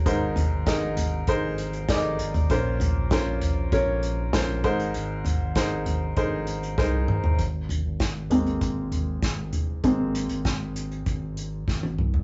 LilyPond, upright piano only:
<<
  \new Staff \with { instrumentName = "Upright piano" } { \time 4/4 \key aes \mixolydian \tempo 4 = 98 <ees' aes' bes' c''>4 <ees' aes' bes' ees''>4 <ees' aes' bes' c''>4 <ees' aes' bes' d'' ees''>4 | <des' f' bes' c''>4 <des' f' bes' c''>4 <des' f' bes' des''>4 <des' f' bes' c''>8 <ees' aes' bes' c''>8~ | <ees' aes' bes' c''>8. r16 <ees' aes' bes' c''>4 <ees' aes' bes' c''>4 <ees' aes' bes' c''>4 | r1 |
r1 | }
  \new Staff \with { instrumentName = "Upright piano" } { \clef bass \time 4/4 \key aes \mixolydian aes,4. r2 r8 | bes,4. r2 aes,8~ | aes,4 r2. | r4. <aes bes c'>8 r2 |
<aes bes c'>4. r2 r8 | }
>>